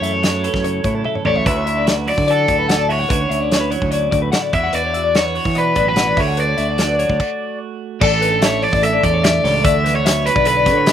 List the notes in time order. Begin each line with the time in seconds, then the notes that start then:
Already playing: F#2 E3 A3 E4 C#5
0.01 F#2 A4 E5, closed hi-hat
0.13 C#5
0.23 F#3 E4, snare, closed hi-hat
0.34 A4
0.44 A4 B4, closed hi-hat
0.54 F#2, kick, snare
0.64 C#3 C#5, closed hi-hat
0.84 A2 E4 C#5, kick, closed hi-hat
0.95 A4
1.05 A4 E5, high tom
1.15 C#5, mid tom
1.25 A1 F#2 A3 E4 A4 C#5 D5, mid tom
1.36 E5, floor tom
1.46 D2 D3 C#4 E4 F#4 B4 E5, kick, closed hi-hat
1.56 C#5
1.66 E4 E5, closed hi-hat
1.77 D5
1.87 F#4, snare, closed hi-hat
1.97 B4
2.07 F#3 E4 C#5 D5, open hi-hat
2.18 D3, kick
2.28 F#4 A4 D5, closed hi-hat
2.48 D2 A2 D5, kick, closed hi-hat
2.59 B4
2.69 C#4 F#5, snare, closed hi-hat
2.79 E4 D5
2.89 F#4 C#5 E5, open hi-hat
2.99 F#5
3.09 D2 D3 C#4 E4 F#4 B4, kick, closed hi-hat
3.19 C#5
3.29 D2 E4 E5, closed hi-hat
3.40 D5
3.52 F#4, snare, closed hi-hat
3.61 B4
3.70 F#3 E4 C#5, closed hi-hat
3.82 D2, kick
3.91 F#4 D5, closed hi-hat
4.11 D2 A2 D5, kick, closed hi-hat
4.22 B4
4.32 E4 F#5, snare, closed hi-hat
4.42 D5
4.52 E2 E3 D4 F#4 E5, kick, closed hi-hat
4.63 F#5
4.73 E2 F#4 B4 D5, closed hi-hat
4.83 C#5
4.94 F#4 E5, closed hi-hat
5.04 D5
5.15 B3 F#4 C#5, snare, closed hi-hat
5.25 B4
5.35 F#4 C#5, open hi-hat
5.45 E3, kick
5.55 B2 B4 D5, closed hi-hat
5.75 A1 F#3 D5, kick, closed hi-hat
5.86 B4
5.96 E3 F#5, snare, closed hi-hat
6.07 D5
6.17 D2 D3 A3 D4 F#4 C#5 E5, kick, open hi-hat
6.28 F#5
6.37 D4 B4 D5, closed hi-hat
6.48 C#5
6.58 D2 F#4 E5, closed hi-hat
6.68 D5
6.78 F#3 D4, snare, closed hi-hat
6.89 B4
6.99 F#4 C#5, closed hi-hat
7.10 D2, kick
7.20 kick, crash
8.00 A1 A2 E3 A3 D4 G4 A4 D5, kick, crash
8.12 A4
8.22 B4, closed hi-hat
8.32 A4
8.42 E3 A3 C#5 E5, snare, closed hi-hat
8.62 D4 C#5 D5, open hi-hat
8.72 A1 D5, kick
8.82 A3 A4 E5, closed hi-hat
8.93 D5
9.02 E2 A2 G4 D5, kick, closed hi-hat
9.14 C#5
9.22 A3 D5 E5, snare, closed hi-hat
9.44 C#2 G4 C#5, snare, open hi-hat
9.54 D5
9.62 D2 D3 F#4 D5 E5, kick, closed hi-hat
9.74 A4
9.84 B4, snare, closed hi-hat
9.95 A4 C#5
10.04 F#3 B3 E5, snare, closed hi-hat
10.25 E4 B4 C#5, closed hi-hat
10.36 B1 D5, kick
10.45 B3 A4 B4, closed hi-hat
10.57 D5
10.65 A2 D3 F#4, kick, snare, closed hi-hat
10.77 C#5
10.86 B3 E5, snare, closed hi-hat